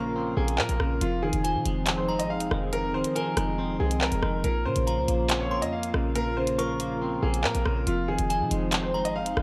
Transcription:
0.00 0.33 A#1 loud
0.00 0.37 A#2 loud
0.00 0.58 C#3 medium
0.00 0.80 F3 medium
0.00 0.35 A#3 medium
0.00 0.98 A#3 medium
0.00 0.98 F4 medium
0.00 0.33 A#4 medium
0.00 0.98 A#4 medium
0.00 0.98 F5 medium
0.00 0.54 C#6 medium
0.00 downlifter medium
0.16 1.01 C4 loud
0.37 0.60 A#1 loud
0.37 1.01 A#3 medium
0.37 0.56 G#4 medium
0.48 closed hi-hat medium
0.58 0.69 A#2 loud
0.58 0.99 A#4 medium
0.58 clap loud
0.69 0.79 A#1 loud
0.69 closed hi-hat medium
0.80 1.00 A#1 loud
0.80 1.01 C#3 medium
0.80 cross-stick loud
1.01 1.32 F1 loud
1.01 2.09 F2 loud
1.01 4.41 F3 medium
1.01 4.41 C4 medium
1.01 4.41 D#4 medium
1.01 1.20 F4 medium
1.01 4.41 G#4 loud
1.01 closed hi-hat medium
1.22 2.30 D#3 medium
1.22 1.94 G#4 medium
1.33 1.56 F1 loud
1.33 closed hi-hat medium
1.44 2.51 F3 medium
1.44 2.05 G#5 medium
1.44 closed hi-hat medium
1.55 1.65 C3 loud
1.65 2.21 F1 loud
1.65 2.07 G#3 medium
1.65 closed hi-hat medium
1.86 2.94 C4 loud
1.86 clap loud
1.86 closed hi-hat loud
1.98 2.16 C5 medium
2.08 3.16 G#3 medium
2.08 2.69 A#5 medium
2.19 2.37 G#1 loud
2.19 2.28 D#5 medium
2.19 closed hi-hat medium
2.30 2.49 F5 medium
2.35 2.50 F1 loud
2.40 closed hi-hat medium
2.51 2.96 F1 loud
2.51 2.93 D#3 medium
2.51 cross-stick loud
2.73 3.80 F2 loud
2.73 2.91 A#4 loud
2.73 closed hi-hat medium
2.94 3.04 D#1 loud
2.94 4.01 D#3 medium
2.94 3.13 C5 medium
3.04 closed hi-hat medium
3.15 4.22 F3 medium
3.15 3.76 A#4 medium
3.15 4.40 G#5 medium
3.15 closed hi-hat medium
3.37 3.78 F1 loud
3.37 3.78 G#3 medium
3.37 cross-stick loud
3.37 closed hi-hat medium
3.58 4.44 C4 loud
3.80 4.11 C2 loud
3.80 4.44 G#3 medium
3.80 3.98 G#4 medium
3.91 closed hi-hat medium
4.01 4.42 A#4 medium
4.01 clap loud
4.12 4.22 F1 loud
4.12 closed hi-hat medium
4.23 4.43 F1 loud
4.23 4.44 D#3 medium
4.23 cross-stick loud
4.44 4.67 A#1 loud
4.44 5.51 A#2 loud
4.44 7.83 A#3 medium
4.44 7.83 F4 medium
4.44 4.63 A#4 medium
4.44 7.83 A#4 medium
4.44 7.83 F5 loud
4.44 closed hi-hat medium
4.65 4.76 A#2 loud
4.65 5.73 C#3 medium
4.65 5.37 C5 medium
4.76 4.99 A#1 loud
4.76 closed hi-hat medium
4.87 5.94 F3 medium
4.87 5.47 A#5 medium
4.87 closed hi-hat medium
4.98 5.08 C#2 loud
5.08 5.63 A#1 loud
5.08 5.50 A#3 medium
5.08 closed hi-hat medium
5.29 6.37 C4 loud
5.29 clap loud
5.29 closed hi-hat loud
5.40 5.59 C#5 medium
5.51 6.58 A#3 medium
5.51 6.12 C6 medium
5.62 5.93 F2 loud
5.62 5.71 D#5 medium
5.62 closed hi-hat medium
5.73 5.91 F5 medium
5.83 closed hi-hat medium
5.94 7.19 A#1 loud
5.94 6.36 C#3 medium
5.94 cross-stick loud
6.15 7.23 A#2 loud
6.15 6.34 A#4 loud
6.15 closed hi-hat medium
6.37 7.44 C#3 medium
6.37 6.56 C5 medium
6.47 closed hi-hat medium
6.58 7.66 F3 medium
6.58 7.19 A#4 medium
6.58 7.40 C#6 medium
6.58 closed hi-hat medium
6.80 7.21 A#3 medium
6.80 closed hi-hat medium
7.02 7.87 C4 loud
7.23 7.46 A#1 loud
7.23 7.87 A#3 medium
7.23 7.41 G#4 medium
7.34 closed hi-hat medium
7.44 7.54 A#2 loud
7.44 7.84 A#4 medium
7.44 clap loud
7.55 7.65 A#1 loud
7.55 closed hi-hat medium
7.66 7.86 A#1 loud
7.66 7.87 C#3 medium
7.66 cross-stick medium
7.87 8.18 F1 loud
7.87 8.94 F2 loud
7.87 9.42 F3 medium
7.87 9.42 C4 medium
7.87 9.42 D#4 medium
7.87 8.05 F4 medium
7.87 9.42 G#4 loud
7.87 closed hi-hat medium
8.08 9.15 D#3 medium
8.08 8.79 G#4 medium
8.18 8.42 F1 loud
8.18 closed hi-hat medium
8.30 9.37 F3 medium
8.30 8.90 G#5 medium
8.30 closed hi-hat medium
8.41 8.51 C3 loud
8.51 9.06 F1 loud
8.51 8.93 G#3 medium
8.51 closed hi-hat medium
8.72 9.42 C4 loud
8.72 clap loud
8.72 closed hi-hat loud
8.83 9.02 C5 medium
8.94 9.42 G#3 medium
8.94 9.42 A#5 medium
9.05 9.22 G#1 loud
9.05 9.14 D#5 medium
9.05 closed hi-hat medium
9.16 9.34 F5 medium
9.21 9.36 F1 loud
9.26 closed hi-hat medium
9.37 9.42 F1 loud
9.37 9.42 D#3 medium
9.37 cross-stick loud

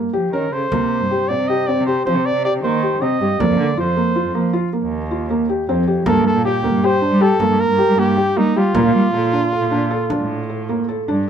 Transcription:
0.13 0.31 F3 medium
0.13 0.28 G4 medium
0.13 frame drum soft
0.33 0.51 D#3 medium
0.33 0.47 C#4 medium
0.33 0.54 A#4 medium
0.52 0.70 C#3 medium
0.52 0.66 A4 medium
0.52 1.30 C5 loud
0.72 0.88 C3 loud
0.72 1.00 A#3 medium
0.72 frame drum medium
1.00 1.17 G2 medium
1.11 1.25 G4 medium
1.11 frame drum soft
1.29 1.38 A#2 medium
1.29 1.44 C4 medium
1.29 1.49 D5 loud
1.40 1.56 C3 medium
1.48 1.64 G4 medium
1.48 1.68 D#5 loud
1.67 1.83 C4 medium
1.67 1.86 D5 loud
1.79 2.02 C3 loud
1.86 2.01 G4 medium
1.86 2.05 C5 loud
2.06 2.18 F3 loud
2.06 2.35 C4 medium
2.06 2.27 C5 loud
2.06 frame drum soft
2.17 2.25 C3 medium
2.25 2.44 D5 loud
2.35 2.51 C3 medium
2.45 2.59 G4 medium
2.45 2.54 D5 loud
2.54 2.62 C3 loud
2.64 2.95 D#3 loud
2.64 2.78 A#3 medium
2.64 3.03 C5 loud
2.83 2.97 G4 medium
2.83 frame drum soft
3.01 3.10 C3 medium
3.01 3.16 C4 medium
3.01 3.42 D#5 loud
3.20 3.29 G2 loud
3.20 3.35 G4 medium
3.20 frame drum soft
3.40 3.48 F2 loud
3.40 3.68 A#3 medium
3.40 3.79 D5 loud
3.40 frame drum medium
3.50 3.58 F2 loud
3.58 3.67 D3 loud
3.77 3.94 F2 loud
3.77 3.92 F4 medium
3.77 4.51 C5 medium
3.77 frame drum soft
3.97 4.11 A#3 medium
4.16 4.30 F4 medium
4.26 4.34 F2 medium
4.35 4.51 F3 medium
4.35 4.49 A#3 medium
4.53 4.68 F4 medium
4.73 5.01 A#3 medium
4.83 5.53 D#2 loud
5.11 5.25 F4 medium
5.30 5.44 A#3 medium
5.49 5.63 G4 medium
5.49 frame drum soft
5.68 6.00 F2 loud
5.68 5.83 C4 loud
5.88 6.01 G4 medium
5.88 frame drum soft
6.06 6.22 G2 loud
6.06 6.34 A#3 loud
6.06 6.25 A4 loud
6.06 frame drum medium
6.27 6.44 A4 loud
6.36 6.51 A#2 loud
6.44 6.59 G4 loud
6.44 6.87 G4 loud
6.44 frame drum soft
6.64 6.72 D2 loud
6.64 6.78 A#3 medium
6.73 6.89 G2 medium
6.84 6.97 G4 loud
6.84 7.23 C5 loud
7.02 7.16 D4 medium
7.11 7.35 G3 loud
7.21 7.35 G4 loud
7.21 7.62 A4 loud
7.40 7.48 G2 loud
7.40 7.68 A#3 medium
7.40 frame drum medium
7.49 7.58 G2 loud
7.60 8.00 A#4 loud
7.69 7.85 G2 loud
7.78 7.92 G4 medium
7.89 7.97 G3 loud
7.97 8.30 G2 loud
7.97 8.12 A#3 loud
7.97 8.39 G4 loud
8.17 8.31 G4 medium
8.17 frame drum soft
8.36 8.45 G3 loud
8.36 8.50 A#3 medium
8.36 8.59 D#4 loud
8.56 8.64 G3 loud
8.56 11.09 F4 loud
8.56 8.70 G4 medium
8.56 frame drum soft
8.75 8.83 A#2 loud
8.75 9.03 A#3 loud
8.75 frame drum medium
8.86 8.93 A#2 loud
8.95 9.02 G3 loud
9.13 9.29 A#2 loud
9.13 9.28 A4 medium
9.33 9.47 D4 medium
9.33 frame drum soft
9.52 9.66 A4 medium
9.52 frame drum soft
9.61 9.69 A#2 loud
9.71 9.87 A#2 loud
9.71 9.85 D4 medium
9.90 10.05 A4 loud
9.90 frame drum soft
10.10 10.38 D4 medium
10.10 frame drum medium
10.20 10.92 A2 loud
10.50 10.63 A4 medium
10.69 10.83 A#3 medium
10.89 11.03 A4 medium
11.08 11.30 G2 medium
11.08 11.22 D4 loud

